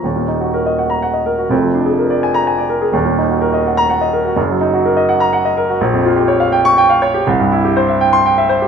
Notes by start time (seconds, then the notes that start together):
0.03 D#1 D#2
0.16 A#2
0.28 D#4
0.41 F#4
0.54 A#4
0.66 D#5
0.79 F#5
0.90 A#5
1.02 F#5
1.14 D#5
1.26 A#4
1.38 F#4
1.49 F1 F2
1.63 F3
1.74 D4
1.86 G#4
1.99 A#4
2.10 D5
2.23 G#5
2.34 A#5
2.47 G#5
2.58 D5
2.69 A#4
2.82 G#4
2.92 D#1 D#2
3.05 A#2
3.18 D#4
3.29 F#4
3.41 A#4
3.54 D#5
3.66 F#5
3.77 A#5
3.90 F#5
4.01 D#5
4.13 A#4
4.25 F#4
4.36 F#1 F#2
4.50 F#3
4.61 D#4
4.73 F#4
4.85 A#4
4.97 D#5
5.09 F#5
5.20 A#5
5.33 F#5
5.45 D#5
5.57 A#4
5.70 F#4
5.81 A#1
5.93 F2
6.05 F4
6.16 G4
6.28 C#5
6.40 F5
6.52 G5
6.65 C#6
6.78 G5
6.90 F5
7.02 C#5
7.14 G4
7.27 C2
7.40 G2
7.52 E4
7.65 G4
7.77 C5
7.89 E5
8.01 G5
8.13 C6
8.26 G5
8.38 E5
8.49 C5
8.62 G4